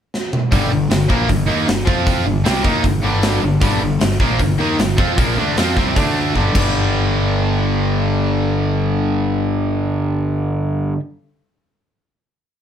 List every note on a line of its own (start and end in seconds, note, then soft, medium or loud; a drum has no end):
0.14 snare medium
0.33 mid tom medium
0.52 0.70 G1 medium
0.52 0.70 G2 loud
0.52 0.70 D3 loud
0.52 0.71 G3 loud
0.52 kick loud
0.52 open hi-hat medium
0.71 0.89 G1 medium
0.71 0.86 G2 medium
0.71 0.86 D3 medium
0.90 1.08 G1 medium
0.90 1.06 G2 medium
0.90 1.06 D3 medium
0.90 snare loud
0.90 open hi-hat medium
1.02 snare soft
1.08 1.28 A#1 medium
1.08 1.28 A#2 medium
1.08 1.28 F3 medium
1.08 1.28 A#3 medium
1.08 kick medium
1.29 1.47 G1 medium
1.29 1.44 G2 medium
1.29 1.45 D3 medium
1.29 kick medium
1.29 open hi-hat medium
1.47 1.66 D#2 loud
1.47 1.67 D#3 medium
1.47 1.67 A#3 medium
1.47 1.67 D#4 medium
1.67 1.86 G1 medium
1.67 1.83 G2 medium
1.67 1.83 D3 medium
1.67 snare loud
1.67 open hi-hat medium
1.85 2.23 F2 medium
1.85 2.24 F3 loud
1.85 2.24 C4 loud
1.85 2.25 F4 loud
1.85 kick loud
2.07 kick loud
2.07 open hi-hat medium
2.26 2.44 G1 medium
2.26 2.41 G2 medium
2.26 2.41 D3 medium
2.45 2.64 C2 medium
2.45 2.64 C3 loud
2.45 2.64 G3 loud
2.45 2.64 C4 loud
2.45 snare loud
2.45 open hi-hat medium
2.64 2.82 D#2 medium
2.64 2.84 D#3 medium
2.64 2.84 A#3 medium
2.64 2.84 D#4 medium
2.64 kick loud
2.84 3.02 G1 medium
2.84 3.00 G2 medium
2.84 3.00 D3 medium
2.84 kick medium
2.84 open hi-hat medium
3.03 3.40 G1 loud
3.03 3.42 G2 medium
3.03 3.42 D3 medium
3.03 3.42 G3 medium
3.23 snare loud
3.23 open hi-hat medium
3.43 3.61 G1 medium
3.43 3.58 G2 medium
3.43 3.58 D3 medium
3.61 3.80 G1 medium
3.61 3.79 G2 loud
3.61 3.80 D3 loud
3.61 3.81 G3 loud
3.61 kick loud
3.61 open hi-hat medium
3.80 3.99 G1 medium
3.80 3.96 G2 medium
3.80 3.97 D3 medium
3.99 4.19 G1 medium
3.99 4.15 G2 medium
3.99 4.16 D3 medium
3.99 snare loud
3.99 open hi-hat medium
4.11 snare soft
4.20 4.38 A#1 medium
4.20 4.39 A#2 medium
4.20 4.39 F3 medium
4.20 4.40 A#3 medium
4.20 kick loud
4.39 4.58 G1 medium
4.39 4.55 G2 medium
4.39 4.55 D3 medium
4.39 kick medium
4.39 open hi-hat medium
4.58 4.78 D#2 loud
4.58 4.78 D#3 loud
4.58 4.78 A#3 loud
4.58 4.78 D#4 medium
4.79 4.97 G1 medium
4.79 4.95 G2 medium
4.79 4.95 D3 medium
4.79 snare medium
4.79 open hi-hat medium
4.98 5.17 F2 medium
4.98 5.17 F3 medium
4.98 5.17 C4 loud
4.98 5.18 F4 loud
4.98 kick loud
5.18 5.36 A#1 loud
5.18 5.37 A#2 loud
5.18 5.37 F3 loud
5.18 5.37 A#3 loud
5.18 kick loud
5.18 open hi-hat medium
5.37 5.55 D2 medium
5.37 5.56 D3 medium
5.37 5.56 A3 loud
5.37 5.57 D4 loud
5.56 5.75 F2 medium
5.56 5.76 F3 loud
5.56 5.76 C4 loud
5.56 5.77 F4 loud
5.56 snare loud
5.56 open hi-hat medium
5.68 snare soft
5.77 5.95 C2 medium
5.77 5.96 C3 medium
5.77 5.96 G3 medium
5.77 5.96 C4 medium
5.77 kick medium
5.77 snare soft
5.96 6.33 D2 medium
5.96 6.34 D3 medium
5.96 6.35 A3 loud
5.96 6.35 D4 loud
5.96 kick loud
5.96 open hi-hat medium
6.35 6.54 G1 loud
6.35 6.52 G2 medium
6.35 6.55 D3 medium
6.35 6.55 G3 loud
6.35 kick medium
6.54 10.92 G1 medium
6.54 10.95 G2 loud
6.54 10.98 D3 loud
6.54 10.99 G3 loud
6.54 kick loud
6.54 crash medium